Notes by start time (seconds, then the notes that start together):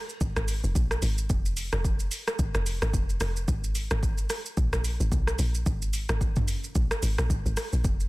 0.09 shaker
0.21 G#1, kick, shaker
0.36 G#1, cross-stick, shaker
0.48 open hi-hat, shaker
0.64 F1, shaker
0.75 A#1, kick, shaker
0.91 cross-stick, shaker
1.02 G#1, open hi-hat, shaker
1.18 shaker
1.30 F1, kick, shaker
1.45 shaker
1.57 open hi-hat, shaker
1.72 F1, cross-stick, shaker
1.85 kick, shaker
2.00 shaker
2.11 open hi-hat, shaker
2.27 cross-stick, shaker
2.39 G#1, kick, shaker
2.55 F1, cross-stick, shaker
2.66 open hi-hat, shaker
2.82 G#1, cross-stick, shaker
2.94 F1, kick, shaker
3.10 shaker
3.20 F1, cross-stick, open hi-hat, shaker
3.36 shaker
3.48 G#1, kick, shaker
3.64 shaker
3.75 open hi-hat, shaker
3.91 G#1, cross-stick, shaker
4.03 kick, shaker
4.18 shaker
4.30 cross-stick, open hi-hat, shaker
4.46 shaker
4.57 A#1, kick, shaker
4.73 A#1, cross-stick, shaker
4.84 open hi-hat, shaker
5.00 G#1, shaker
5.12 B1, kick, shaker
5.27 cross-stick, shaker
5.39 A#1, open hi-hat, shaker
5.55 shaker
5.66 G#1, kick, shaker
5.82 shaker
5.93 open hi-hat, shaker
6.09 G#1, cross-stick, shaker
6.21 kick, shaker
6.36 kick, mid tom, shaker
6.48 open hi-hat, shaker
6.64 shaker
6.75 A#1, kick, shaker
6.91 cross-stick, shaker
7.03 G#1, open hi-hat, shaker
7.18 A#1, cross-stick, shaker
7.30 G#1, kick, shaker
7.46 G#1, shaker
7.57 cross-stick, open hi-hat, shaker
7.73 A#1, shaker
7.84 F1, kick, shaker
8.00 shaker